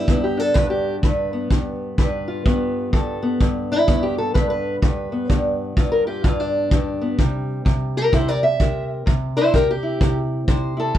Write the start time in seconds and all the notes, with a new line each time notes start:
Already playing: G3 E4 B4
0.08 G2 B3, kick
0.24 G4
0.37 D4 A4
0.54 G2 B4, kick
0.70 G4
1.03 G2 B4, kick
1.33 B3
1.50 G2, kick
1.98 G2 B4, kick
2.28 F4
2.46 G2 B3, kick
2.93 G2 A4, kick
3.23 B3
3.41 G2, kick
3.72 E4
3.87 G2 B3, kick
4.03 G4
4.18 A4
4.34 G2 B4, kick
4.50 B4
4.82 G2 B4, kick
5.12 B3
5.29 G2 D5, kick
5.77 G2 F4, kick
5.92 A#4
6.07 F4 G4
6.24 G2 F4, kick
6.40 D4
6.71 G2, kick
7.01 B3
7.19 C3 G3, kick
7.65 C3, kick
7.97 G4 A#4
8.12 C3 E4 C5, kick
8.28 A#4 D5
8.43 E5
8.60 C3 A#4, kick
9.06 C3, kick
9.37 E4 C5
9.53 C3 G4 A#4, kick
9.71 G4
9.83 E4
10.01 C3, kick
10.48 C3 C5, kick
10.77 E4 A4
10.95 G2, kick